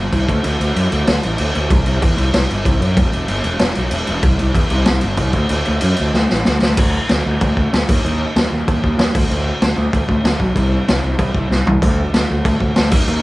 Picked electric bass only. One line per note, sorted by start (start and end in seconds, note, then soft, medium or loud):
0.13 0.23 C2 medium
0.29 0.39 D2 loud
0.45 0.55 D2 medium
0.60 0.71 D2 medium
0.76 0.87 F#2 medium
0.92 1.02 D2 medium
1.08 1.18 D2 medium
1.25 1.35 A1 medium
1.40 1.50 D2 medium
1.56 1.66 D2 medium
1.71 1.82 C2 loud
1.86 1.97 C2 medium
2.02 2.13 E2 medium
2.17 2.28 C2 medium
2.34 2.44 C2 medium
2.51 2.61 G1 medium
2.66 2.76 C2 medium
2.80 2.99 F#2 medium
2.97 3.08 E1 loud
3.13 3.23 E1 medium
3.29 3.39 G1 medium
3.45 3.56 E1 medium
3.61 3.71 E1 loud
3.77 3.87 B1 medium
3.91 4.02 E1 medium
4.08 4.19 E1 loud
4.24 4.34 C2 loud
4.40 4.50 C2 medium
4.55 4.66 E2 medium
4.71 4.82 C2 medium
4.88 4.98 C2 loud
5.04 5.14 G1 medium
5.18 5.29 C2 loud
5.34 5.45 D2 loud
5.50 5.61 D2 loud
5.68 5.78 D2 medium
5.83 5.93 F#2 medium
6.00 6.10 D2 medium
6.14 6.24 D2 loud
6.31 6.41 A1 medium
6.47 6.57 D2 medium
6.62 6.72 D2 medium
6.78 6.98 D2 loud
7.11 7.20 D2 medium
7.26 7.36 D2 medium
7.42 7.51 D2 loud
7.57 7.67 D2 medium
7.73 7.83 D2 medium
7.90 7.99 D#2 medium
8.05 8.25 D#2 loud
8.36 8.46 D#2 medium
8.52 8.62 D#2 medium
8.69 8.78 D#2 loud
8.84 8.93 D#2 medium
8.98 9.08 D#2 medium
9.15 9.25 D2 medium
9.31 9.51 D2 loud
9.62 9.72 D2 medium
9.77 9.87 D2 medium
9.93 10.03 D2 loud
10.09 10.19 D2 medium
10.24 10.34 D2 medium
10.40 10.50 B1 loud
10.55 10.76 C2 loud
10.89 10.98 C2 medium
11.04 11.14 C2 medium
11.19 11.29 C2 loud
11.35 11.45 C2 medium
11.50 11.60 C2 medium
11.66 11.76 C2 medium
11.82 12.02 D2 loud
12.13 12.24 D2 medium
12.31 12.40 D2 medium
12.45 12.55 D2 loud
12.61 12.71 D2 medium
12.78 12.92 D2 medium
12.92 13.02 D#2 loud
13.08 13.22 D#2 loud